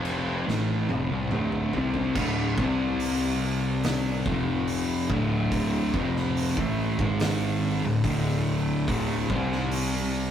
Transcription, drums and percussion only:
0.05 crash medium
0.49 snare medium
0.89 high tom medium
1.31 mid tom medium
1.52 mid tom medium
1.73 floor tom loud
1.94 floor tom medium
2.15 kick loud
2.15 crash loud
2.58 kick loud
3.00 open hi-hat medium
3.83 snare loud
3.83 open hi-hat medium
4.26 kick loud
4.68 open hi-hat medium
5.10 kick loud
5.52 kick loud
5.52 open hi-hat medium
5.94 kick loud
6.16 snare soft
6.37 open hi-hat medium
6.57 kick loud
6.99 kick loud
7.20 snare loud
7.20 open hi-hat medium
8.04 kick loud
8.04 open hi-hat medium
8.88 kick loud
8.88 open hi-hat medium
9.30 kick loud
9.52 snare soft
9.71 open hi-hat medium

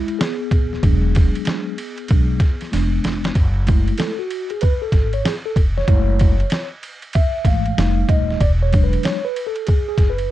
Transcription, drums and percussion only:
0.08 ride soft
0.21 snare loud
0.21 hi-hat pedal medium
0.21 ride medium
0.51 kick medium
0.51 ride medium
0.73 snare soft
0.83 kick loud
0.83 ride medium
1.15 kick loud
1.15 snare soft
1.15 ride medium
1.35 ride soft
1.45 snare loud
1.45 hi-hat pedal soft
1.45 ride medium
1.78 ride medium
1.98 ride soft
2.08 kick medium
2.08 ride medium
2.40 kick medium
2.40 snare soft
2.40 ride medium
2.61 snare soft
2.61 ride soft
2.73 snare medium
2.73 hi-hat pedal soft
2.73 ride medium
3.04 snare medium
3.04 ride medium
3.24 snare medium
3.24 ride soft
3.35 kick loud
3.35 ride medium
3.67 kick loud
3.67 ride medium
3.88 ride soft
3.98 snare medium
3.98 hi-hat pedal soft
3.98 ride medium
4.31 ride medium
4.50 ride soft
4.61 kick medium
4.61 ride medium
4.92 kick medium
4.92 snare soft
4.92 ride medium
5.13 ride soft
5.25 snare loud
5.25 hi-hat pedal soft
5.25 ride medium
5.56 kick loud
5.56 ride medium
5.78 snare soft
5.88 kick loud
5.88 ride medium
6.19 kick loud
6.19 ride medium
6.40 ride soft
6.50 snare loud
6.50 hi-hat pedal soft
6.50 ride medium
6.83 ride medium
7.02 ride soft
7.13 kick medium
7.13 ride medium
7.45 kick medium
7.45 snare soft
7.45 ride medium
7.66 ride soft
7.78 snare loud
7.78 hi-hat pedal soft
7.78 ride medium
8.09 kick medium
8.09 ride medium
8.30 snare soft
8.40 kick loud
8.40 ride medium
8.73 kick loud
8.73 ride medium
8.93 ride soft
9.03 snare loud
9.03 hi-hat pedal soft
9.03 ride medium
9.36 ride medium
9.56 ride soft
9.67 kick medium
9.67 ride medium
9.98 kick medium
9.98 snare soft
9.98 ride medium
10.18 ride soft

